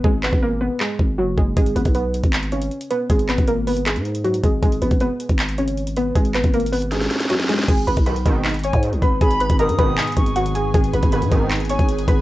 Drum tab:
CC |------------------------------------------------------------------------------------------------|------------------------------------------------------------------------------------------------|------------------------------------------------------------------------------------------------|------------------------------------------------------------------------------------------------|
HH |------------------------------------------------------------------------------------------------|x-----x-----x-----x-----x-----------x-----x-----x-----x-----x-----x-----x-----x-----x-----------|x-----x-----x-----x-----x-----------o-----x-----x-----x-----x-----x-----x-----x-----x-----------|x-----x-----x-----x-----x-----------x-----x-----x-----x-----x-----x-----x-----x-----x-----------|
CP |------------x-----------------------------------x-----------------------------------------------|------------------------------------------------x-----------------------------------------------|------------x-----------------------------------x-----------------------------------------------|------------------------------------------------x-----------------------------------------------|
SD |------------------------------------------------------------------------------------------------|------------------------------------------------------------------------------------------------|------------------------------------------------------------------------------------------------|------------------------------------------------------------------------------------------------|
BD |o-----------------o-----------------------------------------o-----------------------o-----------|o-----------------o-----------------------o-----------------------------------------------------|o-----------------o-----------------------------------------------------------------o-----------|o-----------------o-----------------------o-----------------------------------------------------|

CC |------------------------------------------------------------------------------------------------|x-----------------------------------------------------------------------------------------------|------------------------------------------------------------------------------------------------|------------------------------------------------------------------------------------------------|
HH |x-----x-----x-----x-----x---x---x---o-----x-----x-----x-----x-----x-----x-----------x---x---x---|x-----x-----x-----x-----x-----x-----x-----------x--x--x--x--x-----x-----x-----x-----x-----------|x-----x-----x-----x-----x-----x-----x-----------x--x--x--x--x-----x-----x-----x-----x-----------|x-----x-----x-----x-----x-----x-----x-----------x--x--x--x--x-----x-----x-----x-----x-----------|
CP |------------x-----------------------------------------------------------------------------------|------------------------------------------------x-----------------------------------------------|------------------------------------------------x-----------------------------------------------|------------------------------------------------x-----------------------------------------------|
SD |------------------------------------------------o--o--o--o--o--o--o--o--o--o--o--o--o--o--o--o--|------------------------------------------------------------------------------------------------|------------------------------------------------------------------------------------------------|------------------------------------------------------------------------------------------------|
BD |o-----------------o-----------------------------------------------------------------------------|o-----------------o-----------------o-----------------------------o-----------------o-----------|o-----------------o-----------------o-----------------------o-----------------------------------|o-----------------o-----------------o-----------------------------o-----------------o-----------|